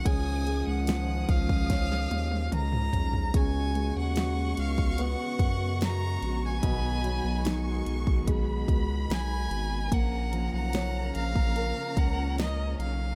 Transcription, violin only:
\new Staff \with { instrumentName = "Violin" } { \time 4/4 \key cis \mixolydian \tempo 4 = 73 gis''8. fis''8. eis''4. ais''4 | gis''8. fis''8. eis''8 fis''4 ais''8. gis''16~ | gis''4.~ gis''16 r4 r16 gis''4 | fis''8. fis''8. eis''4 fis''8 dis''8 eis''8 | }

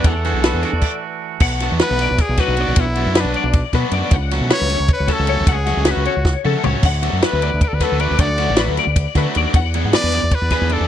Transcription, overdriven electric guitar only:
\new Staff \with { instrumentName = "Overdriven electric guitar" } { \time 7/8 \key b \dorian \tempo 4 = 155 <e b d' gis'>8 <e b d' gis'>8 <e b d' gis'>8 r2 | r8 <fis b d' fis'>8 <fis b d' fis'>8 r4 <fis b d' fis'>8 <fis b d' fis'>8 | r8 <fis b d' fis'>8 <fis b d' fis'>8 r4 <fis b d' fis'>8 <fis b d' fis'>8 | r8 <fis a cis' fis'>8 <fis a cis' fis'>8 r4 <fis a cis' fis'>8 <fis a cis' fis'>8 |
r8 <fis a cis' fis'>8 <fis a cis' fis'>8 r4 <fis a cis' fis'>8 <fis a cis' fis'>8 | r8 <fis a d' fis'>8 <fis a d' fis'>8 r4 <fis a d' fis'>8 <fis a d' fis'>8 | r8 <fis a d' fis'>8 <fis a d' fis'>8 r4 <fis a d' fis'>8 <fis a d' fis'>8 | r8 <e b d' gis'>8 <e b d' gis'>8 r4 <e b d' gis'>8 <e b d' gis'>8 | }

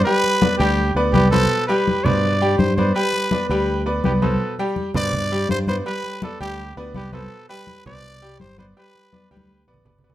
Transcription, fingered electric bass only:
\new Staff \with { instrumentName = "Fingered electric bass" } { \clef bass \time 4/4 \key g \mixolydian \tempo 4 = 165 r4. d,4 d,8 c,4 | r4. g,4. g,4 | r4. d,4. c,4 | r4. g,4. g,4 |
r4. d,4 d,8 c,4 | r4. c,4. g,,4 | r4. d,4 a,,8 g,,4 | }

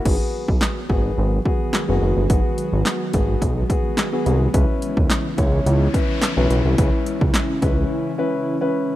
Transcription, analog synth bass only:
\new Staff \with { instrumentName = "Analog synth bass" } { \clef bass \time 4/4 \key gis \minor \tempo 4 = 107 gis,,16 r8 b,,16 r8 gis,,8 gis,,8 r8. fis,,16 fis,,16 g,,16 | gis,,16 r8 gis,,16 r8 gis,,8 b,,8 r4 c,8 | cis,16 r8 dis,16 r8 cis,8 cis,8 r8. b,,16 b,,16 c,16 | cis,16 r8 cis,16 r8 cis,8 r2 | }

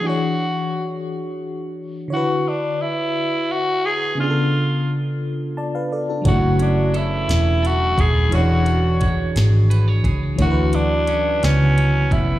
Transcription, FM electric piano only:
\new Staff \with { instrumentName = "FM electric piano" } { \time 6/8 \key e \mixolydian \tempo 4. = 58 << { r2. | r2. | r2 <d'' a''>16 <b' eis''>16 <a' d''>16 <d' a'>16~ | <d' a'>16 r2 r8. |
r2. | r2. | } \\ { <e d' fis' gis' cis''>2. | <d e' fis' b' cis''>2. | <cis b d' eis' gis' a'>2. | <fis a e' cis''>2. |
<e d' fis' gis' cis''>2. | <e e' fis' ais' b' cis''>2. | } >> }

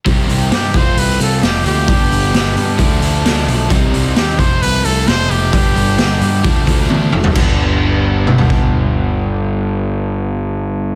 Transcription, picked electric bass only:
\new Staff \with { instrumentName = "Picked electric bass" } { \clef bass \time 4/4 \key g \mixolydian \tempo 4 = 131 c,8 c,8 g,8 f,,8 c,8 c,8 f,,8 d,8 | g,,8 g,,8 g,,8 g,8 d,8 d,8 d,8 b,,8 | c,8 c,8 ees,8 f,,8 c,8 c,8 f,,8 f,,8 | g,,8 g,,8 g,,8 g,8 d,8 d,8 d,8 f,,8 |
g,,1~ | g,,1 | }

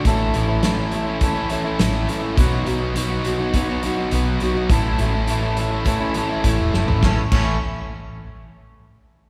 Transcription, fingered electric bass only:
\new Staff \with { instrumentName = "Fingered electric bass" } { \clef bass \time 4/4 \key a \major \tempo 4 = 103 a,,8 a,,2 r8 a,,8 r8 | b,,8 b,,2 r8 b,,8 r8 | a,,8 a,,2 r8 a,,16 e,,16 fis,,16 gis,,16 | a,,16 r16 a,,8 r2. | }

